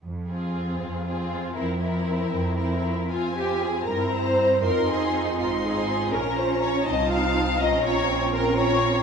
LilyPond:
<<
  \new Staff \with { instrumentName = "Violin section" } { \time 6/8 \key f \minor \tempo 4. = 80 r8 aes'4. aes'4 | bes'8 bes'4. bes'4 | aes''4. bes''4. | c'''4. c'''4. |
bes''4. a''4. | bes''4. bes''4. | }
  \new Staff \with { instrumentName = "Violin section" } { \time 6/8 \key f \minor r8 f'4. f'4 | e'8 e'4. e'4 | f'8 g'8 aes'8 bes'8 c''4 | bes'8 aes'4 f'8 aes'4 |
bes'8 c''8 des''8 ees''8 f''4 | ees''8 des''4 bes'8 des''4 | }
  \new Staff \with { instrumentName = "Viola section" } { \time 6/8 \key f \minor r8 c'4. c'4 | c'8 c'4. c'4 | <c' f'>4. <c' e'>4. | <c' f'>4. <c' f'>4. |
<des' f'>4. <ees' f'>4. | <des' f'>4. <des' f'>4. | }
  \new Staff \with { instrumentName = "Cello section" } { \clef bass \time 6/8 \key f \minor f,4. f,4. | f,4. f,4. | r4. g4. | ees'2. |
des'4. c'4. | c'2. | }
  \new Staff \with { instrumentName = "Double bass section" } { \clef bass \time 6/8 \key f \minor r2. | r2. | f,4. g,4. | f,4. aes,,4. |
bes,,4. c,4. | bes,,2. | }
>>